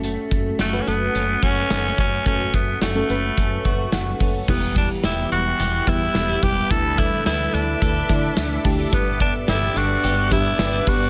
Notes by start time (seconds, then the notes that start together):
Already playing: F#1 A3 C#4 F#4 A4
0.04 A3, closed hi-hat
0.31 F#1 A3, kick, closed hi-hat
0.59 F#1 A3 F#4, snare, closed hi-hat
0.72 A3 C#4 F#4 B4
0.81 C#4
0.86 F#1 A3 B3 C#4 F#4 A4, closed hi-hat
1.15 F#1 C#4, closed hi-hat
1.43 F#1 C#4 F#4, kick, closed hi-hat
1.70 F#1 A3, snare, closed hi-hat
1.98 F#1 C#4, kick, closed hi-hat
2.26 F#1 A3 C#4 F#4 A4, kick, closed hi-hat
2.54 F#1 A3 B3, kick, closed hi-hat
2.81 F#1 A3 F#4, snare, closed hi-hat
2.95 A3 C#4 F#4 A4
3.09 F#1 A3 C#4 F#4 B4, closed hi-hat
3.37 F#1 C#4, kick, closed hi-hat
3.65 F#1 F#4 C#6, kick, closed hi-hat
3.92 F#1 A3 F#5, snare, closed hi-hat
4.20 F#1 C#4, kick, open hi-hat
4.48 E1 E3 G3 B3 E4 G4 B4 E5 B5, kick, crash
4.76 B3 D4, kick, closed hi-hat
5.04 E1 E4 G4, snare, closed hi-hat
5.32 E1 E4 F#4, closed hi-hat
5.59 E1 G4, closed hi-hat
5.87 E2 G3 B3 E4 G4, kick, closed hi-hat
6.15 E1 B3, snare, closed hi-hat
6.42 E1 G3 B3 E4 G4, kick, open hi-hat
6.70 D2 D3 E3 A3 D4 E4 A4 D5 D6, kick, closed hi-hat
6.98 A3 E4, kick, closed hi-hat
7.26 D2 E4 A4, snare, closed hi-hat
7.54 D2 D4 E4, closed hi-hat
7.82 D2 A4, kick, closed hi-hat
8.09 D3 A3 D4 E4 A4, kick, closed hi-hat
8.37 D2 A3 E5, snare, closed hi-hat
8.64 D2 A3 D4 E4 G4 A5, kick, open hi-hat
8.79 E4
8.92 G1 G2 B3 D4 G4 B4 D6, kick, closed hi-hat
9.20 B3 D4, kick, closed hi-hat
9.48 G1 E4 G4, snare, closed hi-hat
9.76 G1 D4 F#4, closed hi-hat
10.04 G1 G4, closed hi-hat
10.31 G2 B3 D4 E4 G4 B4, kick, closed hi-hat
10.59 G1 B3, snare, closed hi-hat
10.87 G1 B3 D4 F#4 G4 B4, kick, open hi-hat